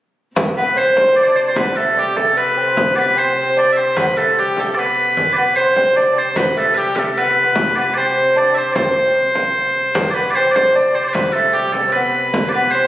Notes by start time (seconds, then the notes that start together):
0.36 C3, frame drum
0.57 B3 B4
0.76 C4 C5
0.97 C4, frame drum
1.16 D4 D5, frame drum
1.23 C5 D5
1.28 D4
1.35 C5
1.41 D5
1.48 C4 C5
1.56 B3 B4, frame drum
1.76 A3 A4
1.97 G3 G4
2.15 A3 A4, frame drum
2.37 B3 B4, frame drum
2.57 C4
2.77 frame drum
2.95 B3 B4 D5
3.15 C4 C5
3.36 C4
3.57 D4 D5, frame drum
3.72 E5
3.77 C4 C5
3.97 B3 B4, frame drum
4.17 A3 A4, frame drum
4.39 G3 G4
4.57 A3 A4, frame drum
4.75 B3 D5, frame drum
4.79 B4
5.15 C3, frame drum
5.33 B4 D5
5.38 B3
5.56 C4 C5
5.76 C4, frame drum
5.96 D4 D5, frame drum
6.15 C4 C5
6.34 B3 B4, frame drum
6.56 A3 A4
6.74 G3 G4 B4
6.95 A3 A4 B4, frame drum
7.16 B3 B4, frame drum
7.30 B3
7.44 B3
7.55 frame drum
7.75 B3 B4 D5
7.94 C4 C5 D5
8.36 D4 D5, frame drum
8.54 C4 C5 E5
8.72 C5 D5, frame drum
8.76 C4
8.96 frame drum
9.16 frame drum
9.35 frame drum
9.76 frame drum
9.95 C3, frame drum
10.10 D5
10.14 B3 B4
10.30 D5
10.35 C4 C5
10.51 D5
10.55 C5, frame drum
10.75 D4 D5, frame drum
10.94 C4 C5
11.04 C5 D5
11.14 B3 B4, frame drum
11.32 A3 A4
11.53 G3 G4
11.72 A4, frame drum
11.87 C4
11.92 B3 B4, frame drum
12.34 frame drum
12.49 B4 D5
12.55 B3
12.71 C4 C5